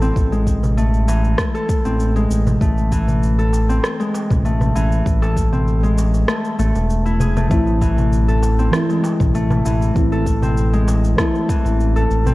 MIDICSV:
0, 0, Header, 1, 6, 480
1, 0, Start_track
1, 0, Key_signature, 0, "minor"
1, 0, Tempo, 612245
1, 128, Time_signature, 4, 2, 24, 8
1, 9676, End_track
2, 0, Start_track
2, 0, Title_t, "Synth keys"
2, 0, Program_c, 0, 88
2, 5872, Note_on_c, 0, 52, 70
2, 5882, Note_on_c, 0, 57, 66
2, 5893, Note_on_c, 0, 60, 65
2, 5903, Note_on_c, 0, 64, 81
2, 6016, Control_c, 0, 64, 127
2, 6813, Note_off_c, 0, 52, 0
2, 6818, Note_off_c, 0, 57, 0
2, 6823, Note_off_c, 0, 60, 0
2, 6828, Note_off_c, 0, 64, 0
2, 6830, Note_on_c, 0, 52, 76
2, 6850, Note_on_c, 0, 60, 65
2, 6862, Note_on_c, 0, 64, 85
2, 7772, Note_off_c, 0, 52, 0
2, 7782, Note_off_c, 0, 60, 0
2, 7788, Note_off_c, 0, 64, 0
2, 7792, Note_on_c, 0, 52, 68
2, 7812, Note_on_c, 0, 60, 64
2, 7822, Note_on_c, 0, 64, 79
2, 8733, Note_off_c, 0, 52, 0
2, 8742, Note_off_c, 0, 60, 0
2, 8748, Note_off_c, 0, 64, 0
2, 8751, Note_on_c, 0, 52, 78
2, 8772, Note_on_c, 0, 60, 73
2, 8782, Note_on_c, 0, 64, 85
2, 9676, Note_off_c, 0, 52, 0
2, 9676, Note_off_c, 0, 60, 0
2, 9676, Note_off_c, 0, 64, 0
2, 9676, End_track
3, 0, Start_track
3, 0, Title_t, "Harp"
3, 0, Program_c, 1, 46
3, 0, Note_on_c, 1, 52, 70
3, 0, Note_on_c, 1, 56, 66
3, 0, Note_on_c, 1, 57, 71
3, 0, Note_on_c, 1, 69, 68
3, 14, Note_on_c, 1, 60, 71
3, 243, Note_off_c, 1, 56, 0
3, 252, Note_on_c, 1, 56, 69
3, 299, Note_off_c, 1, 57, 0
3, 299, Note_off_c, 1, 69, 0
3, 606, Note_on_c, 1, 57, 68
3, 836, Note_off_c, 1, 52, 0
3, 846, Note_on_c, 1, 52, 72
3, 1213, Note_on_c, 1, 69, 73
3, 1449, Note_off_c, 1, 60, 0
3, 1453, Note_on_c, 1, 60, 72
3, 1684, Note_off_c, 1, 56, 0
3, 1694, Note_on_c, 1, 56, 67
3, 1741, Note_off_c, 1, 57, 0
3, 1741, Note_off_c, 1, 69, 0
3, 2048, Note_on_c, 1, 57, 72
3, 2087, Note_off_c, 1, 52, 0
3, 2087, Note_off_c, 1, 56, 0
3, 2287, Note_on_c, 1, 52, 69
3, 2653, Note_on_c, 1, 69, 62
3, 2890, Note_off_c, 1, 60, 0
3, 2893, Note_on_c, 1, 60, 73
3, 3133, Note_on_c, 1, 56, 67
3, 3180, Note_off_c, 1, 57, 0
3, 3180, Note_off_c, 1, 69, 0
3, 3487, Note_on_c, 1, 57, 76
3, 3717, Note_off_c, 1, 52, 0
3, 3727, Note_on_c, 1, 52, 74
3, 4093, Note_on_c, 1, 69, 72
3, 4329, Note_off_c, 1, 60, 0
3, 4332, Note_on_c, 1, 60, 70
3, 4564, Note_off_c, 1, 56, 0
3, 4573, Note_on_c, 1, 56, 63
3, 4620, Note_off_c, 1, 57, 0
3, 4620, Note_off_c, 1, 69, 0
3, 4926, Note_on_c, 1, 57, 73
3, 5163, Note_off_c, 1, 57, 0
3, 5166, Note_on_c, 1, 57, 73
3, 5531, Note_on_c, 1, 64, 71
3, 5647, Note_on_c, 1, 68, 67
3, 5694, Note_off_c, 1, 57, 0
3, 5774, Note_on_c, 1, 57, 64
3, 5821, Note_off_c, 1, 68, 0
3, 5882, Note_off_c, 1, 57, 0
3, 5885, Note_on_c, 1, 57, 76
3, 5927, Note_off_c, 1, 52, 0
3, 5927, Note_off_c, 1, 56, 0
3, 6126, Note_on_c, 1, 52, 71
3, 6493, Note_on_c, 1, 69, 65
3, 6684, Note_off_c, 1, 60, 0
3, 6732, Note_on_c, 1, 60, 66
3, 6973, Note_on_c, 1, 56, 68
3, 7020, Note_off_c, 1, 57, 0
3, 7020, Note_off_c, 1, 69, 0
3, 7327, Note_on_c, 1, 57, 78
3, 7557, Note_off_c, 1, 52, 0
3, 7567, Note_on_c, 1, 52, 70
3, 7579, Note_off_c, 1, 64, 0
3, 7935, Note_on_c, 1, 69, 73
3, 8171, Note_off_c, 1, 60, 0
3, 8174, Note_on_c, 1, 60, 73
3, 8406, Note_off_c, 1, 56, 0
3, 8415, Note_on_c, 1, 56, 70
3, 8462, Note_off_c, 1, 57, 0
3, 8462, Note_off_c, 1, 69, 0
3, 8768, Note_on_c, 1, 57, 71
3, 8998, Note_off_c, 1, 52, 0
3, 9007, Note_on_c, 1, 52, 69
3, 9374, Note_on_c, 1, 69, 74
3, 9612, Note_off_c, 1, 60, 0
3, 9615, Note_on_c, 1, 60, 68
3, 9676, Note_off_c, 1, 52, 0
3, 9676, Note_off_c, 1, 56, 0
3, 9676, Note_off_c, 1, 57, 0
3, 9676, Note_off_c, 1, 60, 0
3, 9676, Note_off_c, 1, 69, 0
3, 9676, End_track
4, 0, Start_track
4, 0, Title_t, "Analog synth bass"
4, 0, Program_c, 2, 38
4, 0, Note_on_c, 2, 33, 95
4, 88, Note_off_c, 2, 33, 0
4, 128, Note_on_c, 2, 33, 97
4, 1056, Note_off_c, 2, 33, 0
4, 1453, Note_on_c, 2, 33, 91
4, 1776, Note_off_c, 2, 33, 0
4, 1806, Note_on_c, 2, 33, 77
4, 2007, Note_off_c, 2, 33, 0
4, 2047, Note_on_c, 2, 33, 88
4, 2976, Note_off_c, 2, 33, 0
4, 3374, Note_on_c, 2, 33, 82
4, 3696, Note_off_c, 2, 33, 0
4, 3729, Note_on_c, 2, 33, 90
4, 3929, Note_off_c, 2, 33, 0
4, 3967, Note_on_c, 2, 33, 86
4, 4896, Note_off_c, 2, 33, 0
4, 5168, Note_on_c, 2, 33, 89
4, 5272, Note_off_c, 2, 33, 0
4, 5296, Note_on_c, 2, 28, 82
4, 5857, Note_off_c, 2, 28, 0
4, 5887, Note_on_c, 2, 33, 88
4, 6816, Note_off_c, 2, 33, 0
4, 7213, Note_on_c, 2, 33, 84
4, 7536, Note_off_c, 2, 33, 0
4, 7567, Note_on_c, 2, 33, 95
4, 7768, Note_off_c, 2, 33, 0
4, 7807, Note_on_c, 2, 33, 86
4, 8736, Note_off_c, 2, 33, 0
4, 9134, Note_on_c, 2, 33, 95
4, 9456, Note_off_c, 2, 33, 0
4, 9488, Note_on_c, 2, 33, 81
4, 9676, Note_off_c, 2, 33, 0
4, 9676, End_track
5, 0, Start_track
5, 0, Title_t, "Darbuka"
5, 495, Note_on_c, 9, 64, 72
5, 573, Note_off_c, 9, 64, 0
5, 854, Note_on_c, 9, 62, 60
5, 932, Note_off_c, 9, 62, 0
5, 1461, Note_on_c, 9, 63, 29
5, 1539, Note_off_c, 9, 63, 0
5, 1935, Note_on_c, 9, 64, 82
5, 2013, Note_off_c, 9, 64, 0
5, 2173, Note_on_c, 9, 62, 29
5, 2252, Note_off_c, 9, 62, 0
5, 2412, Note_on_c, 9, 64, 68
5, 2491, Note_off_c, 9, 64, 0
5, 2766, Note_on_c, 9, 62, 58
5, 2844, Note_off_c, 9, 62, 0
5, 3247, Note_on_c, 9, 63, 55
5, 3326, Note_off_c, 9, 63, 0
5, 3378, Note_on_c, 9, 64, 78
5, 3456, Note_off_c, 9, 64, 0
5, 3612, Note_on_c, 9, 64, 86
5, 3691, Note_off_c, 9, 64, 0
5, 4096, Note_on_c, 9, 63, 55
5, 4098, Note_on_c, 9, 62, 36
5, 4174, Note_off_c, 9, 63, 0
5, 4176, Note_off_c, 9, 62, 0
5, 4334, Note_on_c, 9, 64, 70
5, 4413, Note_off_c, 9, 64, 0
5, 4692, Note_on_c, 9, 62, 55
5, 4771, Note_off_c, 9, 62, 0
5, 4815, Note_on_c, 9, 62, 32
5, 4893, Note_off_c, 9, 62, 0
5, 5298, Note_on_c, 9, 63, 34
5, 5376, Note_off_c, 9, 63, 0
5, 5644, Note_on_c, 9, 64, 75
5, 5722, Note_off_c, 9, 64, 0
5, 5776, Note_on_c, 9, 64, 81
5, 5855, Note_off_c, 9, 64, 0
5, 6010, Note_on_c, 9, 62, 31
5, 6089, Note_off_c, 9, 62, 0
5, 6256, Note_on_c, 9, 64, 75
5, 6335, Note_off_c, 9, 64, 0
5, 6605, Note_on_c, 9, 62, 61
5, 6684, Note_off_c, 9, 62, 0
5, 7085, Note_on_c, 9, 63, 60
5, 7163, Note_off_c, 9, 63, 0
5, 7215, Note_on_c, 9, 64, 80
5, 7294, Note_off_c, 9, 64, 0
5, 7451, Note_on_c, 9, 64, 94
5, 7530, Note_off_c, 9, 64, 0
5, 8172, Note_on_c, 9, 64, 78
5, 8250, Note_off_c, 9, 64, 0
5, 8529, Note_on_c, 9, 62, 68
5, 8607, Note_off_c, 9, 62, 0
5, 9130, Note_on_c, 9, 63, 37
5, 9209, Note_off_c, 9, 63, 0
5, 9614, Note_on_c, 9, 64, 82
5, 9676, Note_off_c, 9, 64, 0
5, 9676, End_track
6, 0, Start_track
6, 0, Title_t, "Drums"
6, 16, Note_on_c, 9, 69, 29
6, 95, Note_off_c, 9, 69, 0
6, 127, Note_on_c, 9, 36, 96
6, 131, Note_on_c, 9, 69, 39
6, 205, Note_off_c, 9, 36, 0
6, 210, Note_off_c, 9, 69, 0
6, 257, Note_on_c, 9, 69, 19
6, 336, Note_off_c, 9, 69, 0
6, 367, Note_on_c, 9, 36, 53
6, 370, Note_on_c, 9, 69, 66
6, 446, Note_off_c, 9, 36, 0
6, 448, Note_off_c, 9, 69, 0
6, 497, Note_on_c, 9, 69, 30
6, 576, Note_off_c, 9, 69, 0
6, 611, Note_on_c, 9, 69, 37
6, 689, Note_off_c, 9, 69, 0
6, 736, Note_on_c, 9, 69, 19
6, 815, Note_off_c, 9, 69, 0
6, 849, Note_on_c, 9, 69, 71
6, 927, Note_off_c, 9, 69, 0
6, 976, Note_on_c, 9, 69, 32
6, 1055, Note_off_c, 9, 69, 0
6, 1084, Note_on_c, 9, 37, 65
6, 1087, Note_on_c, 9, 36, 87
6, 1088, Note_on_c, 9, 69, 39
6, 1163, Note_off_c, 9, 37, 0
6, 1165, Note_off_c, 9, 36, 0
6, 1167, Note_off_c, 9, 69, 0
6, 1216, Note_on_c, 9, 69, 20
6, 1294, Note_off_c, 9, 69, 0
6, 1327, Note_on_c, 9, 36, 94
6, 1328, Note_on_c, 9, 69, 71
6, 1405, Note_off_c, 9, 36, 0
6, 1407, Note_off_c, 9, 69, 0
6, 1455, Note_on_c, 9, 69, 28
6, 1533, Note_off_c, 9, 69, 0
6, 1568, Note_on_c, 9, 69, 41
6, 1647, Note_off_c, 9, 69, 0
6, 1697, Note_on_c, 9, 69, 19
6, 1775, Note_off_c, 9, 69, 0
6, 1810, Note_on_c, 9, 69, 69
6, 1888, Note_off_c, 9, 69, 0
6, 1937, Note_on_c, 9, 69, 28
6, 2016, Note_off_c, 9, 69, 0
6, 2047, Note_on_c, 9, 36, 100
6, 2051, Note_on_c, 9, 69, 38
6, 2125, Note_off_c, 9, 36, 0
6, 2129, Note_off_c, 9, 69, 0
6, 2177, Note_on_c, 9, 69, 18
6, 2255, Note_off_c, 9, 69, 0
6, 2287, Note_on_c, 9, 36, 57
6, 2288, Note_on_c, 9, 69, 68
6, 2365, Note_off_c, 9, 36, 0
6, 2367, Note_off_c, 9, 69, 0
6, 2416, Note_on_c, 9, 69, 29
6, 2494, Note_off_c, 9, 69, 0
6, 2531, Note_on_c, 9, 69, 38
6, 2609, Note_off_c, 9, 69, 0
6, 2656, Note_on_c, 9, 69, 19
6, 2734, Note_off_c, 9, 69, 0
6, 2771, Note_on_c, 9, 69, 66
6, 2849, Note_off_c, 9, 69, 0
6, 2898, Note_on_c, 9, 69, 32
6, 2977, Note_off_c, 9, 69, 0
6, 3008, Note_on_c, 9, 37, 69
6, 3012, Note_on_c, 9, 69, 38
6, 3086, Note_off_c, 9, 37, 0
6, 3090, Note_off_c, 9, 69, 0
6, 3138, Note_on_c, 9, 69, 20
6, 3217, Note_off_c, 9, 69, 0
6, 3252, Note_on_c, 9, 69, 70
6, 3330, Note_off_c, 9, 69, 0
6, 3374, Note_on_c, 9, 36, 94
6, 3378, Note_on_c, 9, 69, 30
6, 3452, Note_off_c, 9, 36, 0
6, 3456, Note_off_c, 9, 69, 0
6, 3491, Note_on_c, 9, 69, 41
6, 3569, Note_off_c, 9, 69, 0
6, 3617, Note_on_c, 9, 69, 19
6, 3696, Note_off_c, 9, 69, 0
6, 3732, Note_on_c, 9, 69, 63
6, 3810, Note_off_c, 9, 69, 0
6, 3858, Note_on_c, 9, 69, 28
6, 3936, Note_off_c, 9, 69, 0
6, 3968, Note_on_c, 9, 36, 99
6, 3972, Note_on_c, 9, 69, 41
6, 4046, Note_off_c, 9, 36, 0
6, 4051, Note_off_c, 9, 69, 0
6, 4099, Note_on_c, 9, 69, 19
6, 4178, Note_off_c, 9, 69, 0
6, 4208, Note_on_c, 9, 36, 54
6, 4212, Note_on_c, 9, 69, 67
6, 4286, Note_off_c, 9, 36, 0
6, 4290, Note_off_c, 9, 69, 0
6, 4338, Note_on_c, 9, 69, 30
6, 4416, Note_off_c, 9, 69, 0
6, 4452, Note_on_c, 9, 69, 36
6, 4530, Note_off_c, 9, 69, 0
6, 4578, Note_on_c, 9, 69, 19
6, 4656, Note_off_c, 9, 69, 0
6, 4689, Note_on_c, 9, 69, 73
6, 4768, Note_off_c, 9, 69, 0
6, 4817, Note_on_c, 9, 69, 31
6, 4895, Note_off_c, 9, 69, 0
6, 4926, Note_on_c, 9, 37, 72
6, 4930, Note_on_c, 9, 69, 38
6, 5005, Note_off_c, 9, 37, 0
6, 5009, Note_off_c, 9, 69, 0
6, 5056, Note_on_c, 9, 69, 19
6, 5134, Note_off_c, 9, 69, 0
6, 5169, Note_on_c, 9, 69, 69
6, 5247, Note_off_c, 9, 69, 0
6, 5295, Note_on_c, 9, 69, 29
6, 5374, Note_off_c, 9, 69, 0
6, 5409, Note_on_c, 9, 69, 39
6, 5487, Note_off_c, 9, 69, 0
6, 5535, Note_on_c, 9, 69, 19
6, 5613, Note_off_c, 9, 69, 0
6, 5649, Note_on_c, 9, 69, 69
6, 5728, Note_off_c, 9, 69, 0
6, 5775, Note_on_c, 9, 69, 26
6, 5853, Note_off_c, 9, 69, 0
6, 5887, Note_on_c, 9, 36, 109
6, 5888, Note_on_c, 9, 69, 40
6, 5965, Note_off_c, 9, 36, 0
6, 5967, Note_off_c, 9, 69, 0
6, 6014, Note_on_c, 9, 69, 19
6, 6092, Note_off_c, 9, 69, 0
6, 6127, Note_on_c, 9, 36, 59
6, 6129, Note_on_c, 9, 69, 67
6, 6205, Note_off_c, 9, 36, 0
6, 6207, Note_off_c, 9, 69, 0
6, 6256, Note_on_c, 9, 69, 33
6, 6335, Note_off_c, 9, 69, 0
6, 6370, Note_on_c, 9, 69, 39
6, 6448, Note_off_c, 9, 69, 0
6, 6495, Note_on_c, 9, 69, 20
6, 6574, Note_off_c, 9, 69, 0
6, 6608, Note_on_c, 9, 69, 71
6, 6687, Note_off_c, 9, 69, 0
6, 6734, Note_on_c, 9, 69, 35
6, 6812, Note_off_c, 9, 69, 0
6, 6845, Note_on_c, 9, 37, 74
6, 6848, Note_on_c, 9, 69, 40
6, 6923, Note_off_c, 9, 37, 0
6, 6927, Note_off_c, 9, 69, 0
6, 6975, Note_on_c, 9, 69, 21
6, 7054, Note_off_c, 9, 69, 0
6, 7089, Note_on_c, 9, 69, 67
6, 7168, Note_off_c, 9, 69, 0
6, 7213, Note_on_c, 9, 36, 93
6, 7216, Note_on_c, 9, 69, 31
6, 7291, Note_off_c, 9, 36, 0
6, 7295, Note_off_c, 9, 69, 0
6, 7330, Note_on_c, 9, 69, 41
6, 7408, Note_off_c, 9, 69, 0
6, 7455, Note_on_c, 9, 69, 21
6, 7534, Note_off_c, 9, 69, 0
6, 7570, Note_on_c, 9, 69, 69
6, 7648, Note_off_c, 9, 69, 0
6, 7697, Note_on_c, 9, 69, 31
6, 7776, Note_off_c, 9, 69, 0
6, 7807, Note_on_c, 9, 36, 115
6, 7809, Note_on_c, 9, 69, 43
6, 7885, Note_off_c, 9, 36, 0
6, 7888, Note_off_c, 9, 69, 0
6, 7935, Note_on_c, 9, 69, 21
6, 8014, Note_off_c, 9, 69, 0
6, 8047, Note_on_c, 9, 36, 61
6, 8049, Note_on_c, 9, 69, 70
6, 8126, Note_off_c, 9, 36, 0
6, 8128, Note_off_c, 9, 69, 0
6, 8176, Note_on_c, 9, 69, 33
6, 8254, Note_off_c, 9, 69, 0
6, 8289, Note_on_c, 9, 69, 42
6, 8368, Note_off_c, 9, 69, 0
6, 8416, Note_on_c, 9, 69, 20
6, 8494, Note_off_c, 9, 69, 0
6, 8529, Note_on_c, 9, 69, 70
6, 8608, Note_off_c, 9, 69, 0
6, 8657, Note_on_c, 9, 69, 35
6, 8736, Note_off_c, 9, 69, 0
6, 8767, Note_on_c, 9, 36, 103
6, 8767, Note_on_c, 9, 37, 74
6, 8771, Note_on_c, 9, 69, 40
6, 8845, Note_off_c, 9, 37, 0
6, 8846, Note_off_c, 9, 36, 0
6, 8849, Note_off_c, 9, 69, 0
6, 8897, Note_on_c, 9, 69, 23
6, 8976, Note_off_c, 9, 69, 0
6, 9007, Note_on_c, 9, 36, 97
6, 9011, Note_on_c, 9, 69, 78
6, 9086, Note_off_c, 9, 36, 0
6, 9089, Note_off_c, 9, 69, 0
6, 9138, Note_on_c, 9, 69, 32
6, 9217, Note_off_c, 9, 69, 0
6, 9251, Note_on_c, 9, 69, 42
6, 9330, Note_off_c, 9, 69, 0
6, 9378, Note_on_c, 9, 69, 21
6, 9456, Note_off_c, 9, 69, 0
6, 9491, Note_on_c, 9, 69, 71
6, 9570, Note_off_c, 9, 69, 0
6, 9617, Note_on_c, 9, 69, 33
6, 9676, Note_off_c, 9, 69, 0
6, 9676, End_track
0, 0, End_of_file